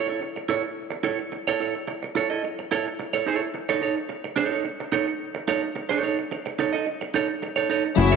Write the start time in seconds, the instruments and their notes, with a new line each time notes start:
0.08 clean electric guitar E4 A4 C#5
0.21 muted clean electric guitar stroke
0.36 muted clean electric guitar stroke
0.49 clean electric guitar E4 A4 C#5
0.63 muted clean electric guitar stroke
0.91 muted clean electric guitar stroke
1.03 clean electric guitar E4 A4 C#5
1.19 muted clean electric guitar stroke
1.32 muted clean electric guitar stroke
1.47 clean electric guitar E4 A4 C#5
1.60 clean electric guitar E4 A4 C#5
1.75 muted clean electric guitar stroke
1.88 muted clean electric guitar stroke
2.03 muted clean electric guitar stroke
2.15 clean electric guitar E4 A4 C#5
2.30 clean electric guitar E4 A4 D#5
2.44 muted clean electric guitar stroke
2.59 muted clean electric guitar stroke
2.71 clean electric guitar E4 A4 C#5
2.87 muted clean electric guitar stroke
2.99 muted clean electric guitar stroke
3.13 clean electric guitar E4 A4 C#5
3.26 clean electric guitar E4 A4 C#5
3.41 muted clean electric guitar stroke
3.54 muted clean electric guitar stroke
3.69 clean electric guitar D#4 A4 C#5
3.82 clean electric guitar D#4 A4 C#5
3.96 muted clean electric guitar stroke
4.09 muted clean electric guitar stroke
4.24 muted clean electric guitar stroke
4.36 clean electric guitar D#4 A4 C#5
4.50 clean electric guitar D#4 A4 C#5
4.65 muted clean electric guitar stroke
4.80 muted clean electric guitar stroke
4.92 clean electric guitar D#4 A4 C#5
5.07 muted clean electric guitar stroke
5.35 muted clean electric guitar stroke
5.48 clean electric guitar D#4 A4 C#5
5.62 muted clean electric guitar stroke
5.76 muted clean electric guitar stroke
5.89 clean electric guitar D#4 A4 C#5
6.03 clean electric guitar D#4 A4 C#5
6.19 muted clean electric guitar stroke
6.31 muted clean electric guitar stroke
6.46 muted clean electric guitar stroke
6.59 clean electric guitar D#4 A4 C#5
6.73 clean electric guitar D#4 A4 D#5
6.86 muted clean electric guitar stroke
7.01 muted clean electric guitar stroke
7.14 clean electric guitar D#4 A4 C#5
7.28 muted clean electric guitar stroke
7.42 muted clean electric guitar stroke
7.56 clean electric guitar D#4 A4 C#5
7.70 clean electric guitar D#4 A4 C#5
7.85 muted clean electric guitar stroke
7.96 fingered electric bass F#1, string section E3 F#3 A3 C#4 F#4, tine electric piano F#3 A3 C#4 E4 G#4, violin section E4 E5, muted clean electric guitar stroke
8.12 clean electric guitar A4 C#5